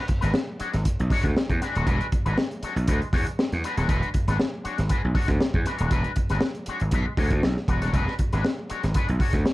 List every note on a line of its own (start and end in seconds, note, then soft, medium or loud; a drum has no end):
0.08 muted clean electric guitar stroke soft
0.08 kick loud
0.08 closed hi-hat medium
0.21 0.33 G#1 medium
0.21 0.32 G#3 medium
0.21 0.33 D4 medium
0.21 0.33 F#4 medium
0.21 0.33 B4 medium
0.21 snare soft
0.21 closed hi-hat soft
0.33 muted clean electric guitar stroke soft
0.33 snare loud
0.59 0.75 G#3 medium
0.59 0.73 D4 medium
0.59 0.72 F#4 medium
0.59 0.72 C#5 medium
0.59 muted slap bass stroke soft
0.59 closed hi-hat medium
0.73 0.84 G#1 medium
0.73 muted clean electric guitar stroke soft
0.73 snare soft
0.73 closed hi-hat soft
0.85 muted clean electric guitar stroke soft
0.85 muted slap bass stroke soft
0.85 kick medium
0.85 closed hi-hat loud
0.99 1.10 B1 medium
0.99 muted clean electric guitar stroke soft
0.99 closed hi-hat soft
1.10 1.30 G#3 medium
1.10 1.25 D4 medium
1.10 1.25 F#4 medium
1.10 1.24 C#5 loud
1.10 kick loud
1.10 open hi-hat medium
1.24 1.34 D2 loud
1.24 muted clean electric guitar stroke soft
1.24 kick medium
1.24 snare soft
1.24 closed hi-hat medium
1.37 muted clean electric guitar stroke soft
1.37 snare medium
1.49 1.60 E2 loud
1.49 muted clean electric guitar stroke soft
1.49 kick medium
1.49 closed hi-hat soft
1.62 1.76 G#3 medium
1.62 1.75 D4 medium
1.62 1.75 F#4 medium
1.62 1.75 B4 medium
1.62 snare soft
1.62 closed hi-hat medium
1.75 1.87 D#1 medium
1.75 1.85 G#3 medium
1.75 1.86 D4 medium
1.75 1.86 F#4 medium
1.75 1.87 C#5 medium
1.75 closed hi-hat soft
1.87 1.98 E1 loud
1.87 2.06 G#3 medium
1.87 2.06 D4 loud
1.87 2.06 F#4 loud
1.87 2.06 B4 loud
1.87 kick loud
1.87 closed hi-hat medium
2.01 closed hi-hat soft
2.12 muted clean electric guitar stroke soft
2.12 kick medium
2.12 closed hi-hat medium
2.26 2.36 G#1 medium
2.26 2.37 G#3 medium
2.26 2.37 D4 medium
2.26 2.37 F#4 medium
2.26 2.38 B4 medium
2.26 closed hi-hat soft
2.38 snare loud
2.51 closed hi-hat soft
2.63 2.78 G#3 medium
2.63 2.76 D4 medium
2.63 2.76 F#4 medium
2.63 2.76 C#5 medium
2.63 muted slap bass stroke medium
2.63 closed hi-hat medium
2.76 2.86 B1 medium
2.76 muted clean electric guitar stroke medium
2.76 closed hi-hat soft
2.88 3.00 D2 medium
2.88 3.07 G#3 medium
2.88 3.01 D4 medium
2.88 3.00 F#4 medium
2.88 3.00 B4 medium
2.88 kick medium
2.88 closed hi-hat medium
3.01 muted clean electric guitar stroke soft
3.01 closed hi-hat soft
3.13 3.25 E2 loud
3.13 3.28 G#3 medium
3.13 3.27 D4 medium
3.13 3.27 F#4 medium
3.13 3.27 C#5 medium
3.13 kick loud
3.13 snare soft
3.13 open hi-hat medium
3.26 muted clean electric guitar stroke soft
3.26 closed hi-hat medium
3.39 muted clean electric guitar stroke soft
3.39 snare loud
3.52 3.63 E2 medium
3.52 muted clean electric guitar stroke soft
3.52 snare soft
3.52 closed hi-hat soft
3.64 3.78 G#3 medium
3.64 3.78 D4 medium
3.64 3.77 F#4 medium
3.64 3.77 B4 medium
3.64 closed hi-hat medium
3.77 3.89 D#1 medium
3.77 3.87 G#3 soft
3.77 3.88 D4 medium
3.77 3.88 F#4 medium
3.77 3.89 C#5 medium
3.77 snare soft
3.77 closed hi-hat soft
3.88 4.01 E1 loud
3.88 4.08 G#3 medium
3.88 4.08 D4 medium
3.88 4.08 F#4 medium
3.88 4.09 B4 medium
3.88 kick loud
3.88 closed hi-hat medium
4.03 closed hi-hat soft
4.14 muted clean electric guitar stroke soft
4.14 kick medium
4.14 closed hi-hat medium
4.28 4.38 G#1 medium
4.28 4.38 G#3 medium
4.28 4.38 D4 medium
4.28 4.38 F#4 medium
4.28 4.39 B4 medium
4.28 snare soft
4.28 closed hi-hat soft
4.40 snare loud
4.64 4.80 G#3 medium
4.64 4.78 D4 medium
4.64 4.78 F#4 medium
4.64 4.77 C#5 medium
4.64 muted slap bass stroke soft
4.64 closed hi-hat medium
4.78 4.89 G#1 loud
4.78 muted clean electric guitar stroke soft
4.78 snare soft
4.78 closed hi-hat soft
4.89 5.09 G#3 medium
4.89 5.03 D4 medium
4.89 5.02 F#4 medium
4.89 5.02 B4 medium
4.89 muted slap bass stroke soft
4.89 kick loud
4.89 closed hi-hat medium
5.03 5.14 B1 medium
5.03 muted clean electric guitar stroke soft
5.15 5.31 G#3 medium
5.15 5.28 D4 medium
5.15 5.28 F#4 medium
5.15 5.28 C#5 medium
5.15 kick medium
5.15 open hi-hat medium
5.28 5.39 D2 medium
5.28 muted clean electric guitar stroke soft
5.28 kick loud
5.28 snare soft
5.28 closed hi-hat medium
5.40 muted clean electric guitar stroke medium
5.40 snare medium
5.54 5.65 E2 loud
5.54 muted clean electric guitar stroke soft
5.54 kick medium
5.66 5.78 G#3 medium
5.66 5.78 D4 medium
5.66 5.77 F#4 medium
5.66 5.77 B4 medium
5.66 snare soft
5.66 closed hi-hat medium
5.78 5.90 D#1 medium
5.78 5.90 G#3 soft
5.78 5.90 D4 soft
5.78 5.90 F#4 soft
5.78 5.92 C#5 medium
5.78 closed hi-hat medium
5.91 6.03 E1 loud
5.91 6.11 G#3 medium
5.91 6.11 D4 medium
5.91 6.11 F#4 loud
5.91 6.11 B4 loud
5.91 kick loud
5.91 closed hi-hat medium
6.04 closed hi-hat soft
6.16 muted clean electric guitar stroke soft
6.16 kick medium
6.16 closed hi-hat medium
6.29 6.41 G1 medium
6.29 6.42 G#3 medium
6.29 6.42 D4 medium
6.29 6.42 F#4 medium
6.29 6.42 B4 medium
6.29 snare soft
6.29 closed hi-hat soft
6.41 muted clean electric guitar stroke soft
6.41 snare loud
6.55 closed hi-hat soft
6.66 6.83 G#3 medium
6.66 6.81 D4 medium
6.66 6.81 F#4 medium
6.66 6.81 C#5 medium
6.66 muted slap bass stroke soft
6.66 closed hi-hat medium
6.80 6.91 G#1 loud
6.80 muted clean electric guitar stroke soft
6.80 closed hi-hat soft
6.91 7.04 B1 medium
6.91 7.12 G#3 medium
6.91 7.06 D4 medium
6.91 7.06 F#4 medium
6.91 7.05 B4 loud
6.91 kick medium
6.91 closed hi-hat loud
7.06 muted clean electric guitar stroke soft
7.17 7.30 D2 medium
7.17 7.33 G#3 medium
7.17 7.31 D4 medium
7.17 7.31 F#4 medium
7.17 7.31 C#5 medium
7.17 kick loud
7.17 snare soft
7.17 open hi-hat medium
7.30 7.41 D2 medium
7.30 muted clean electric guitar stroke soft
7.30 kick loud
7.30 closed hi-hat medium
7.43 7.55 B1 medium
7.43 muted clean electric guitar stroke soft
7.43 snare loud
7.57 muted clean electric guitar stroke medium
7.57 snare soft
7.68 7.83 E1 medium
7.68 7.82 G#3 medium
7.68 7.82 D4 medium
7.68 7.81 F#4 medium
7.68 7.81 B4 medium
7.68 kick medium
7.68 closed hi-hat medium
7.82 7.93 D#1 medium
7.82 7.93 G#3 medium
7.82 7.93 D4 medium
7.82 7.94 F#4 medium
7.82 7.94 C#5 medium
7.82 snare soft
7.82 closed hi-hat medium
7.94 8.06 E1 loud
7.94 8.13 G#3 medium
7.94 8.13 D4 medium
7.94 8.14 F#4 medium
7.94 8.14 B4 loud
7.94 kick medium
7.94 closed hi-hat medium
8.07 snare soft
8.19 muted clean electric guitar stroke soft
8.19 kick medium
8.19 closed hi-hat medium
8.33 8.43 G#1 medium
8.33 8.44 G#3 medium
8.33 8.44 D4 medium
8.33 8.44 F#4 medium
8.33 8.45 B4 medium
8.33 snare soft
8.33 closed hi-hat soft
8.45 muted clean electric guitar stroke soft
8.45 snare loud
8.69 8.85 G#3 medium
8.69 8.84 D4 medium
8.69 8.83 F#4 medium
8.69 8.84 C#5 medium
8.69 muted slap bass stroke medium
8.69 closed hi-hat medium
8.83 8.94 G#1 medium
8.83 muted clean electric guitar stroke soft
8.83 snare soft
8.83 closed hi-hat soft
8.94 9.15 G#3 medium
8.94 9.08 D4 medium
8.94 9.08 F#4 medium
8.94 9.07 B4 medium
8.94 kick medium
8.94 closed hi-hat medium
9.08 9.19 B1 medium
9.08 muted clean electric guitar stroke soft
9.08 closed hi-hat soft
9.20 9.36 G#3 medium
9.20 9.34 D4 medium
9.20 9.33 F#4 medium
9.20 9.34 C#5 medium
9.20 kick medium
9.20 open hi-hat medium
9.33 9.44 D2 medium
9.33 muted clean electric guitar stroke soft
9.33 kick medium
9.33 snare soft
9.33 closed hi-hat soft
9.45 muted clean electric guitar stroke medium
9.45 snare medium